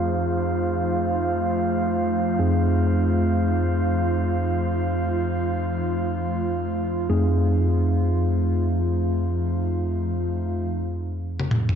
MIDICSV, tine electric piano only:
0, 0, Header, 1, 2, 480
1, 0, Start_track
1, 0, Tempo, 500000
1, 11282, End_track
2, 0, Start_track
2, 0, Title_t, "Tine electric piano"
2, 0, Program_c, 0, 4
2, 0, Note_on_c, 0, 41, 69
2, 0, Note_on_c, 0, 57, 62
2, 0, Note_on_c, 0, 60, 64
2, 0, Note_on_c, 0, 63, 64
2, 0, Note_on_c, 0, 68, 75
2, 2274, Note_off_c, 0, 41, 0
2, 2274, Note_off_c, 0, 57, 0
2, 2274, Note_off_c, 0, 60, 0
2, 2274, Note_off_c, 0, 63, 0
2, 2274, Note_off_c, 0, 68, 0
2, 2297, Note_on_c, 0, 68, 74
2, 2298, Note_on_c, 0, 41, 69
2, 2298, Note_on_c, 0, 57, 61
2, 2298, Note_on_c, 0, 60, 65
2, 2298, Note_on_c, 0, 63, 65
2, 6790, Note_off_c, 0, 41, 0
2, 6790, Note_off_c, 0, 57, 0
2, 6790, Note_off_c, 0, 60, 0
2, 6790, Note_off_c, 0, 63, 0
2, 6790, Note_off_c, 0, 68, 0
2, 6813, Note_on_c, 0, 41, 72
2, 6813, Note_on_c, 0, 57, 66
2, 6813, Note_on_c, 0, 60, 62
2, 6813, Note_on_c, 0, 63, 63
2, 6814, Note_on_c, 0, 68, 80
2, 11282, Note_off_c, 0, 41, 0
2, 11282, Note_off_c, 0, 57, 0
2, 11282, Note_off_c, 0, 60, 0
2, 11282, Note_off_c, 0, 63, 0
2, 11282, Note_off_c, 0, 68, 0
2, 11282, End_track
0, 0, End_of_file